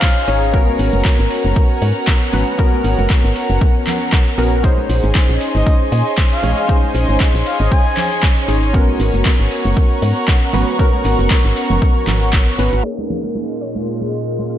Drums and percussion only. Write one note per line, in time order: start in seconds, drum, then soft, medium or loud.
0.02 kick loud
0.02 clap loud
0.02 closed hi-hat medium
0.28 open hi-hat loud
0.42 closed hi-hat medium
0.54 kick loud
0.54 closed hi-hat medium
0.67 high conga medium
0.79 open hi-hat loud
0.93 closed hi-hat soft
0.93 high conga medium
1.05 kick loud
1.05 clap loud
1.05 closed hi-hat medium
1.31 open hi-hat loud
1.44 closed hi-hat soft
1.44 high conga medium
1.56 kick loud
1.56 closed hi-hat medium
1.82 open hi-hat loud
1.96 closed hi-hat soft
2.07 kick loud
2.07 clap loud
2.07 closed hi-hat medium
2.33 open hi-hat loud
2.33 high conga medium
2.33 low conga medium
2.47 closed hi-hat soft
2.59 kick loud
2.59 closed hi-hat medium
2.73 high conga medium
2.84 open hi-hat loud
2.99 closed hi-hat soft
2.99 high conga medium
3.10 kick loud
3.10 clap loud
3.10 closed hi-hat medium
3.36 open hi-hat loud
3.50 closed hi-hat soft
3.61 kick loud
3.61 closed hi-hat medium
3.87 clap medium
3.87 open hi-hat loud
3.87 low conga medium
4.01 closed hi-hat soft
4.12 kick loud
4.12 clap loud
4.12 closed hi-hat medium
4.38 open hi-hat loud
4.52 closed hi-hat soft
4.64 kick loud
4.64 closed hi-hat medium
4.64 shaker soft
4.77 high conga medium
4.89 open hi-hat loud
4.89 shaker medium
5.04 closed hi-hat soft
5.04 high conga medium
5.04 shaker soft
5.15 kick loud
5.15 clap loud
5.15 closed hi-hat medium
5.15 shaker soft
5.41 open hi-hat loud
5.41 shaker medium
5.55 closed hi-hat soft
5.55 high conga medium
5.55 shaker soft
5.66 kick loud
5.66 closed hi-hat medium
5.66 shaker soft
5.92 open hi-hat loud
5.92 shaker medium
6.06 closed hi-hat soft
6.06 shaker soft
6.18 kick loud
6.18 clap loud
6.18 closed hi-hat medium
6.18 shaker soft
6.43 open hi-hat loud
6.43 high conga medium
6.43 low conga medium
6.43 shaker medium
6.58 closed hi-hat soft
6.58 shaker soft
6.69 kick loud
6.69 closed hi-hat medium
6.69 shaker soft
6.84 high conga medium
6.95 open hi-hat loud
6.95 shaker medium
7.09 closed hi-hat medium
7.09 high conga medium
7.09 shaker soft
7.20 kick loud
7.20 clap loud
7.20 closed hi-hat medium
7.20 shaker soft
7.46 open hi-hat medium
7.46 shaker medium
7.60 closed hi-hat medium
7.60 shaker soft
7.72 kick loud
7.72 closed hi-hat medium
7.72 shaker soft
7.97 clap medium
7.97 open hi-hat loud
7.97 low conga medium
7.97 shaker medium
8.11 closed hi-hat medium
8.11 shaker soft
8.23 kick loud
8.23 clap loud
8.23 closed hi-hat medium
8.23 shaker soft
8.49 open hi-hat loud
8.49 shaker medium
8.63 closed hi-hat soft
8.63 shaker soft
8.74 kick loud
8.74 closed hi-hat medium
8.74 shaker soft
8.88 high conga medium
9.00 open hi-hat loud
9.00 shaker medium
9.14 closed hi-hat medium
9.14 high conga medium
9.14 shaker soft
9.25 kick loud
9.25 clap loud
9.25 closed hi-hat medium
9.25 shaker soft
9.51 open hi-hat medium
9.51 shaker medium
9.65 closed hi-hat medium
9.65 high conga medium
9.65 shaker soft
9.77 kick loud
9.77 closed hi-hat medium
9.77 shaker soft
10.02 open hi-hat loud
10.02 shaker medium
10.16 closed hi-hat medium
10.16 shaker soft
10.28 kick loud
10.28 clap loud
10.28 closed hi-hat medium
10.28 shaker soft
10.53 open hi-hat loud
10.53 high conga medium
10.53 low conga medium
10.53 shaker medium
10.68 closed hi-hat medium
10.68 shaker soft
10.79 kick loud
10.79 closed hi-hat medium
10.79 shaker soft
10.93 high conga medium
11.05 open hi-hat loud
11.05 shaker medium
11.19 closed hi-hat medium
11.19 high conga medium
11.19 shaker soft
11.30 kick loud
11.30 clap loud
11.30 closed hi-hat medium
11.30 shaker soft
11.56 open hi-hat loud
11.56 shaker medium
11.70 closed hi-hat medium
11.70 high conga medium
11.70 low conga medium
11.70 shaker soft
11.82 kick loud
11.82 closed hi-hat medium
11.82 shaker soft
12.07 clap medium
12.07 open hi-hat medium
12.07 low conga medium
12.07 shaker medium
12.22 closed hi-hat medium
12.22 shaker soft
12.33 kick loud
12.33 clap loud
12.33 closed hi-hat medium
12.33 shaker soft
12.59 open hi-hat loud
12.59 shaker medium
12.73 closed hi-hat medium
12.73 shaker soft
12.99 high conga medium
13.10 muted conga soft
13.10 low conga medium
13.10 shaker medium
13.24 high conga medium
13.35 muted conga medium
13.62 shaker medium
13.75 muted conga soft
13.75 high conga medium
14.01 muted conga medium
14.13 shaker medium
14.27 shaker soft
14.39 muted conga medium